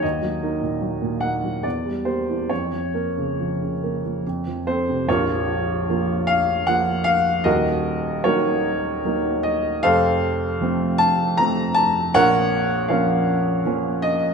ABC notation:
X:1
M:3/4
L:1/16
Q:1/4=76
K:Bbm
V:1 name="Grand piano"
e6 g2 =d2 c2 | d8 z2 c2 | [FBd]6 f2 g2 f2 | [GBe]4 [GBd]4 z2 e2 |
[=Acf]6 =a2 b2 a2 | [Bdg]4 [Bdf]4 z2 e2 |]
V:2 name="Grand piano" clef=bass
E,, G, [B,E] B,, G, B,, [B,E] G, =E,, =G, [B,=G] =E, | F,, F, [B,B] D, F, D, [B,B] F, F,, F, [C=A] C, | [B,,,,B,,,]4 [F,B,F]4 [F,B,F]4 | [E,,,E,,]4 [G,B,E]4 [G,B,E]4 |
[F,,,F,,]4 [F,=A,C]4 [F,A,C]4 | [B,,,B,,]4 [F,B,D]4 [F,B,D]4 |]